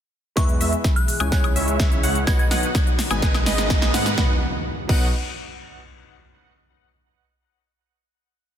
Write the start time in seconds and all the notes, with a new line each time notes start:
0.36 E2 B2 E3 G#3 B3 E4 G#4 B4 E5 C#6, kick, snare, closed hi-hat, riser, cabasa
0.49 closed hi-hat, cabasa
0.61 E2 G#3 B3 E4 B4 E5, open hi-hat, cabasa
0.73 closed hi-hat, cabasa
0.84 kick, snare, closed hi-hat, cabasa
0.96 F#6, closed hi-hat, cabasa
1.08 open hi-hat, cabasa
1.20 C#2 G#3 C#4 E4 C#5 G#5 F#6, closed hi-hat, cabasa, high woodblock
1.31 C#3 G#3 C#4 E4 C#5 F#6, kick, snare, closed hi-hat, cabasa
1.44 closed hi-hat, cabasa, high woodblock
1.56 C#2 G#3 C#4 E4 C#5 E5, open hi-hat, cabasa
1.68 closed hi-hat, cabasa
1.80 kick, snare, closed hi-hat, cabasa
1.92 closed hi-hat, cabasa
2.03 C#2 G#3 C#4 E4 C#5 F#5, open hi-hat, cabasa
2.15 closed hi-hat, cabasa
2.26 B1 B2 D#3 F#3 B3 D#4 F#4 B4 D#5 F#5 G#6, kick, snare, closed hi-hat, cabasa
2.39 G#6, closed hi-hat, cabasa
2.51 B1 B3 D#4 F#4 D#5 F#5, snare, open hi-hat, cabasa
2.63 closed hi-hat, cabasa
2.75 kick, snare, closed hi-hat, cabasa
2.87 closed hi-hat, cabasa
2.99 snare, open hi-hat, cabasa
3.10 G#1 G#3 B3 D#4 B4 G#5, closed hi-hat, cabasa, high woodblock
3.21 G#3 B3 D#4 G#4 B4, kick, snare, closed hi-hat, cabasa
3.35 snare, closed hi-hat, cabasa, high woodblock
3.46 G#1 G#3 B3 D#4 B4 D#5, snare, open hi-hat, cabasa
3.58 snare, closed hi-hat, cabasa
3.70 kick, snare, closed hi-hat, cabasa
3.82 snare, closed hi-hat, cabasa
3.94 G#2 G#3 B3 D#4 B4 F#5, snare, open hi-hat, cabasa
4.06 snare, closed hi-hat, cabasa
4.16 B1 B2 D#3 F#3 B3 D#4 F#4 B4 D#5 F#5, kick, snare, impact
4.88 B1 F#3 B3 D#4 F#4 B4 D#5 F#5, kick, crash